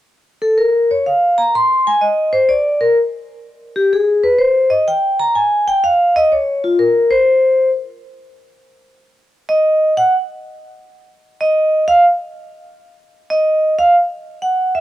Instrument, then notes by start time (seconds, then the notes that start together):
vibraphone
0.42 A4
0.58 A#4
0.91 C#5
1.06 F5
1.38 A#5
1.55 C6
1.87 G#5
2.01 D#5
2.33 C5
2.49 D5
2.81 A#4
3.76 G4
3.93 G#4
4.24 B4
4.39 C5
4.70 D#5
4.88 G5
5.20 A#5
5.35 G#5
5.68 G5
5.84 F5
6.16 D#5
6.32 C#5
6.64 F4
6.79 A#4
7.11 C5
9.49 D#5
9.97 F#5
11.41 D#5
11.88 F5
13.30 D#5
13.79 F5
14.42 F#5
14.75 E5